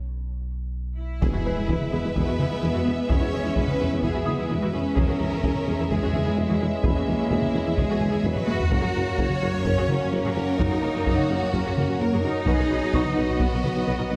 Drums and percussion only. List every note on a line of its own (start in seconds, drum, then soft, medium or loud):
1.22 taiko medium
1.69 taiko medium
1.81 taiko mid soft
2.16 taiko medium
2.39 taiko mid medium
3.09 taiko medium
3.56 taiko medium
3.68 taiko mid soft
4.03 taiko medium
4.26 taiko mid medium
4.96 taiko medium
5.44 taiko medium
5.55 taiko mid soft
5.90 taiko medium
6.13 taiko mid soft
6.84 taiko medium
7.31 taiko medium
7.42 taiko mid soft
7.78 taiko medium
8.01 taiko mid medium
8.24 taiko low-mid medium
8.36 taiko low-mid medium
8.48 taiko high loud
8.60 taiko low medium
8.72 taiko loud
9.18 taiko medium
9.30 taiko mid soft
9.65 taiko medium
9.89 taiko mid medium
10.59 taiko medium
11.06 taiko medium
11.18 taiko mid soft
11.53 taiko medium
11.77 taiko mid medium
12.47 taiko medium
12.93 taiko medium
13.05 taiko mid soft
13.40 taiko medium
13.64 taiko mid medium